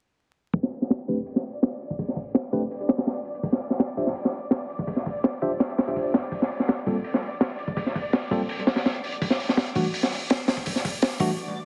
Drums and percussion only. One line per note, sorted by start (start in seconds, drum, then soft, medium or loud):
0.54 kick loud
0.54 open hi-hat medium
0.63 snare soft
0.72 open hi-hat medium
0.82 snare soft
0.90 snare medium
0.90 open hi-hat medium
0.99 closed hi-hat soft
1.08 kick medium
1.08 open hi-hat medium
1.26 open hi-hat medium
1.36 snare soft
1.44 open hi-hat medium
1.63 snare medium
1.63 open hi-hat medium
1.81 open hi-hat medium
1.90 kick medium
1.99 kick loud
1.99 open hi-hat medium
2.08 snare soft
2.16 kick medium
2.16 open hi-hat medium
2.35 snare loud
2.35 open hi-hat medium
2.52 kick medium
2.52 open hi-hat medium
2.71 open hi-hat medium
2.81 closed hi-hat soft
2.88 snare medium
2.88 open hi-hat medium
2.98 snare medium
2.98 open hi-hat medium
3.07 snare medium
3.07 open hi-hat medium
3.16 closed hi-hat soft
3.25 open hi-hat medium
3.35 closed hi-hat soft
3.43 kick loud
3.43 open hi-hat medium
3.52 snare medium
3.61 open hi-hat medium
3.70 snare soft
3.79 snare loud
3.79 open hi-hat medium
3.88 closed hi-hat soft
3.97 open hi-hat medium
4.07 snare soft
4.15 open hi-hat medium
4.25 snare soft
4.33 open hi-hat medium
4.51 snare loud
4.51 open hi-hat medium
4.70 open hi-hat medium
4.79 kick medium
4.87 kick loud
4.87 open hi-hat medium
4.96 snare soft
5.06 kick medium
5.06 open hi-hat medium
5.23 snare loud
5.23 open hi-hat medium
5.41 kick medium
5.41 open hi-hat medium
5.60 snare medium
5.60 open hi-hat medium
5.69 closed hi-hat soft
5.78 snare loud
5.78 open hi-hat medium
5.88 closed hi-hat soft
5.96 kick medium
5.96 open hi-hat medium
6.14 snare medium
6.14 open hi-hat medium
6.24 closed hi-hat soft
6.32 kick loud
6.32 open hi-hat medium
6.42 snare medium
6.51 open hi-hat medium
6.60 snare soft
6.68 snare loud
6.68 open hi-hat medium
6.77 closed hi-hat soft
6.86 kick medium
6.86 open hi-hat medium
7.04 open hi-hat medium
7.14 snare soft
7.22 open hi-hat medium
7.41 snare loud
7.41 open hi-hat medium
7.59 open hi-hat medium
7.68 kick medium
7.77 kick loud
7.77 open hi-hat medium
7.86 snare soft
7.95 kick medium
7.95 open hi-hat medium
8.13 snare loud
8.13 open hi-hat medium
8.31 kick medium
8.31 open hi-hat medium
8.49 open hi-hat medium
8.59 closed hi-hat soft
8.67 snare medium
8.67 open hi-hat medium
8.76 snare medium
8.76 open hi-hat medium
8.85 snare medium
8.85 open hi-hat medium
8.94 closed hi-hat soft
9.04 open hi-hat medium
9.12 closed hi-hat soft
9.22 kick loud
9.22 open hi-hat medium
9.30 snare medium
9.40 open hi-hat medium
9.49 snare soft
9.57 snare loud
9.57 open hi-hat medium
9.66 closed hi-hat soft
9.75 kick medium
9.75 open hi-hat medium
9.94 open hi-hat medium
10.03 snare medium
10.12 open hi-hat medium
10.30 snare loud
10.30 open hi-hat medium
10.48 snare loud
10.48 open hi-hat medium
10.57 kick medium
10.66 kick loud
10.66 open hi-hat medium
10.76 snare soft
10.85 kick medium
10.85 open hi-hat medium
11.02 snare loud
11.02 open hi-hat medium
11.20 kick medium
11.20 open hi-hat medium